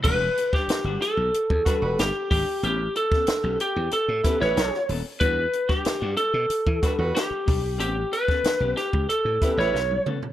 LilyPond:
<<
  \new Staff \with { instrumentName = "Lead electric guitar" } { \time 4/4 \key e \dorian \tempo 4 = 93 b'8. g'8. a'4. g'8 g'8 | g'8 a'4 g'8 a'8. cis''8. r8 | b'8. g'8. a'4. g'4 | g'8 b'4 g'8 a'8. cis''8. r8 | }
  \new Staff \with { instrumentName = "Horn section" } { \time 4/4 \key e \dorian r2 r8 <g fis' b'>16 <g fis' b'>8 r8. | r2 r8 <g e' b'>16 <g e' b'>8. r8 | r2 r8 <g fis' b'>16 <g fis' b'>8 r8. | r2 r8 <g e' b'>16 <g e' b'>8 r8. | }
  \new Staff \with { instrumentName = "Hollow-body jazz guitar" } { \time 4/4 \key e \dorian <g d' fis'>16 r8 <g d' g'>16 r16 <g d' fis'>16 r4 <g d' fis'>16 r8. <g d' g'>16 r16 | <b cis' g'>16 r8 <b cis' a'>16 r16 <b cis' g'>16 r4 <b cis' g'>16 r8. <b cis' a'>16 r16 | <g d' fis'>16 r8 <g d' g'>16 r16 <g d' fis'>16 r4 <g d' fis'>16 r8. <g d' g'>16 r16 | <b cis' g'>16 r8 <b cis' a'>16 r16 <b cis' g'>16 r4 <b cis' g'>16 r8. <b cis' a'>16 r16 | }
  \new Staff \with { instrumentName = "Slap bass" } { \clef bass \time 4/4 \key e \dorian e,,8 r8. g,,16 r16 b,,16 r16 e,16 r16 e,,16 g,,16 r16 gis,,16 r16 | a,,8 r8. b,,16 r16 e,16 r16 a,16 r16 a,,16 b,,16 r16 dis,,16 r16 | e,8 r8. g,16 r16 b,16 r16 e16 r16 e,16 r8 b,,8 | a,,8 r8. b,,16 r16 cis,16 r16 a,16 r16 a,,16 b,,8 r8 | }
  \new DrumStaff \with { instrumentName = "Drums" } \drummode { \time 4/4 <cymc bd>8 hh16 <bd sn>16 <hh sn>8 <hh sn>8 hh16 bd16 <hh bd sn>8 <hh sn>8 <hho bd>8 | hh8 hh16 <bd sn>16 <hh sn>8 hh8 hh8 <hh bd sn>16 sn16 <hh sn>16 sn16 hho8 | <hh bd>8 hh16 <bd sn>16 <hh sn>8 hh8 hh16 bd16 <hh bd sn>8 <hh sn>8 <hho bd>8 | hh8 hh16 <bd sn>16 <hh sn>8 <hh sn>16 bd16 hh8 <hh bd sn>16 sn16 sn16 tommh16 toml16 tomfh16 | }
>>